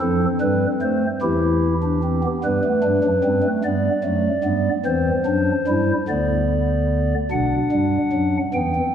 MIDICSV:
0, 0, Header, 1, 2, 480
1, 0, Start_track
1, 0, Tempo, 806452
1, 7, Time_signature, 6, 3, 24, 8
1, 2407, Tempo, 818554
1, 5282, End_track
2, 0, Start_track
2, 0, Title_t, "Pipe organ"
2, 0, Program_c, 0, 19
2, 1, Note_on_c, 0, 69, 73
2, 2, Note_on_c, 0, 41, 81
2, 2, Note_on_c, 0, 60, 67
2, 3, Note_on_c, 0, 53, 82
2, 152, Note_off_c, 0, 69, 0
2, 153, Note_off_c, 0, 41, 0
2, 153, Note_off_c, 0, 53, 0
2, 243, Note_on_c, 0, 55, 85
2, 243, Note_on_c, 0, 71, 66
2, 247, Note_on_c, 0, 43, 84
2, 393, Note_off_c, 0, 55, 0
2, 393, Note_off_c, 0, 71, 0
2, 396, Note_off_c, 0, 43, 0
2, 486, Note_on_c, 0, 72, 70
2, 487, Note_on_c, 0, 57, 78
2, 624, Note_off_c, 0, 60, 0
2, 635, Note_off_c, 0, 72, 0
2, 636, Note_off_c, 0, 57, 0
2, 724, Note_on_c, 0, 52, 87
2, 724, Note_on_c, 0, 64, 78
2, 725, Note_on_c, 0, 40, 87
2, 725, Note_on_c, 0, 67, 74
2, 1034, Note_off_c, 0, 64, 0
2, 1089, Note_on_c, 0, 62, 68
2, 1191, Note_off_c, 0, 62, 0
2, 1211, Note_on_c, 0, 60, 66
2, 1312, Note_off_c, 0, 60, 0
2, 1329, Note_on_c, 0, 59, 79
2, 1343, Note_off_c, 0, 52, 0
2, 1344, Note_off_c, 0, 40, 0
2, 1344, Note_off_c, 0, 67, 0
2, 1431, Note_off_c, 0, 59, 0
2, 1453, Note_on_c, 0, 59, 69
2, 1454, Note_on_c, 0, 43, 75
2, 1454, Note_on_c, 0, 55, 78
2, 1455, Note_on_c, 0, 71, 77
2, 1553, Note_off_c, 0, 43, 0
2, 1553, Note_off_c, 0, 55, 0
2, 1574, Note_on_c, 0, 57, 72
2, 1599, Note_off_c, 0, 59, 0
2, 1673, Note_off_c, 0, 57, 0
2, 1685, Note_on_c, 0, 62, 88
2, 1686, Note_on_c, 0, 55, 83
2, 1690, Note_on_c, 0, 43, 79
2, 1789, Note_off_c, 0, 55, 0
2, 1791, Note_off_c, 0, 43, 0
2, 1810, Note_on_c, 0, 42, 73
2, 1811, Note_on_c, 0, 54, 70
2, 1834, Note_off_c, 0, 62, 0
2, 1911, Note_off_c, 0, 42, 0
2, 1911, Note_off_c, 0, 54, 0
2, 1927, Note_on_c, 0, 60, 80
2, 1929, Note_on_c, 0, 55, 75
2, 1930, Note_on_c, 0, 43, 74
2, 2030, Note_off_c, 0, 43, 0
2, 2030, Note_off_c, 0, 55, 0
2, 2044, Note_on_c, 0, 57, 72
2, 2069, Note_off_c, 0, 71, 0
2, 2076, Note_off_c, 0, 60, 0
2, 2147, Note_off_c, 0, 57, 0
2, 2168, Note_on_c, 0, 55, 74
2, 2168, Note_on_c, 0, 59, 84
2, 2169, Note_on_c, 0, 74, 74
2, 2170, Note_on_c, 0, 43, 79
2, 2317, Note_off_c, 0, 55, 0
2, 2317, Note_off_c, 0, 59, 0
2, 2318, Note_off_c, 0, 43, 0
2, 2405, Note_on_c, 0, 54, 67
2, 2406, Note_on_c, 0, 57, 76
2, 2407, Note_on_c, 0, 42, 70
2, 2553, Note_off_c, 0, 54, 0
2, 2554, Note_off_c, 0, 57, 0
2, 2555, Note_off_c, 0, 42, 0
2, 2638, Note_on_c, 0, 55, 70
2, 2639, Note_on_c, 0, 43, 69
2, 2640, Note_on_c, 0, 59, 83
2, 2787, Note_off_c, 0, 74, 0
2, 2789, Note_off_c, 0, 43, 0
2, 2789, Note_off_c, 0, 55, 0
2, 2790, Note_off_c, 0, 59, 0
2, 2882, Note_on_c, 0, 60, 92
2, 2883, Note_on_c, 0, 40, 74
2, 2883, Note_on_c, 0, 52, 75
2, 2884, Note_on_c, 0, 72, 74
2, 3031, Note_off_c, 0, 52, 0
2, 3031, Note_off_c, 0, 60, 0
2, 3032, Note_off_c, 0, 40, 0
2, 3120, Note_on_c, 0, 42, 77
2, 3122, Note_on_c, 0, 54, 76
2, 3122, Note_on_c, 0, 62, 83
2, 3269, Note_off_c, 0, 42, 0
2, 3270, Note_off_c, 0, 54, 0
2, 3271, Note_off_c, 0, 62, 0
2, 3363, Note_on_c, 0, 43, 65
2, 3363, Note_on_c, 0, 55, 66
2, 3364, Note_on_c, 0, 64, 82
2, 3501, Note_off_c, 0, 72, 0
2, 3511, Note_off_c, 0, 55, 0
2, 3512, Note_off_c, 0, 43, 0
2, 3512, Note_off_c, 0, 64, 0
2, 3601, Note_on_c, 0, 50, 63
2, 3605, Note_on_c, 0, 59, 80
2, 3605, Note_on_c, 0, 74, 65
2, 3606, Note_on_c, 0, 38, 66
2, 4222, Note_off_c, 0, 50, 0
2, 4224, Note_off_c, 0, 59, 0
2, 4225, Note_off_c, 0, 38, 0
2, 4225, Note_off_c, 0, 74, 0
2, 4323, Note_on_c, 0, 47, 67
2, 4323, Note_on_c, 0, 62, 61
2, 4324, Note_on_c, 0, 35, 70
2, 4325, Note_on_c, 0, 78, 63
2, 4473, Note_off_c, 0, 47, 0
2, 4474, Note_off_c, 0, 35, 0
2, 4561, Note_on_c, 0, 55, 70
2, 4563, Note_on_c, 0, 43, 72
2, 4711, Note_off_c, 0, 55, 0
2, 4713, Note_off_c, 0, 43, 0
2, 4801, Note_on_c, 0, 42, 73
2, 4802, Note_on_c, 0, 54, 61
2, 4944, Note_off_c, 0, 62, 0
2, 4945, Note_off_c, 0, 78, 0
2, 4951, Note_off_c, 0, 42, 0
2, 4952, Note_off_c, 0, 54, 0
2, 5041, Note_on_c, 0, 59, 64
2, 5042, Note_on_c, 0, 40, 78
2, 5042, Note_on_c, 0, 79, 68
2, 5043, Note_on_c, 0, 52, 75
2, 5146, Note_off_c, 0, 59, 0
2, 5167, Note_on_c, 0, 60, 60
2, 5192, Note_off_c, 0, 40, 0
2, 5192, Note_off_c, 0, 52, 0
2, 5270, Note_off_c, 0, 60, 0
2, 5282, Note_off_c, 0, 79, 0
2, 5282, End_track
0, 0, End_of_file